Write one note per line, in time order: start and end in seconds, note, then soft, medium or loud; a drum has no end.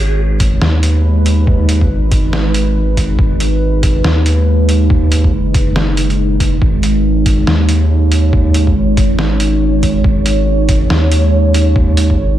0.00 0.60 G#1 loud
0.00 12.39 G#3 medium
0.00 12.39 D#4 medium
0.00 6.60 B4 medium
0.40 kick loud
0.40 closed hi-hat medium
0.62 1.89 D#2 medium
0.62 snare loud
0.83 closed hi-hat medium
1.26 closed hi-hat medium
1.47 kick loud
1.69 closed hi-hat medium
1.81 kick medium
1.90 3.17 G#1 loud
2.12 kick loud
2.12 closed hi-hat medium
2.33 snare loud
2.54 closed hi-hat medium
2.97 kick medium
2.97 closed hi-hat medium
3.19 4.03 G#1 medium
3.19 kick loud
3.40 closed hi-hat medium
3.83 kick loud
3.83 closed hi-hat medium
4.04 5.32 D#2 loud
4.04 snare loud
4.26 closed hi-hat medium
4.69 closed hi-hat medium
4.90 kick loud
5.12 closed hi-hat medium
5.24 kick medium
5.33 6.60 F#1 loud
5.54 kick loud
5.54 closed hi-hat medium
5.76 snare loud
5.97 closed hi-hat medium
6.10 closed hi-hat soft
6.40 kick medium
6.40 closed hi-hat medium
6.62 7.46 G#1 loud
6.62 12.39 C#5 medium
6.62 kick loud
6.83 closed hi-hat medium
7.26 kick loud
7.26 closed hi-hat medium
7.47 8.74 D#2 loud
7.47 snare loud
7.69 closed hi-hat medium
8.12 closed hi-hat medium
8.33 kick loud
8.54 closed hi-hat medium
8.67 kick medium
8.76 10.03 G#1 loud
8.97 kick loud
8.97 closed hi-hat medium
9.19 snare loud
9.40 closed hi-hat medium
9.83 kick medium
9.83 closed hi-hat medium
10.04 10.89 G#1 loud
10.04 kick loud
10.26 closed hi-hat medium
10.69 kick loud
10.69 closed hi-hat medium
10.90 12.17 D#2 loud
10.90 snare loud
11.12 closed hi-hat medium
11.54 closed hi-hat medium
11.76 kick loud
11.97 closed hi-hat medium
12.10 kick medium
12.19 12.39 G#1 loud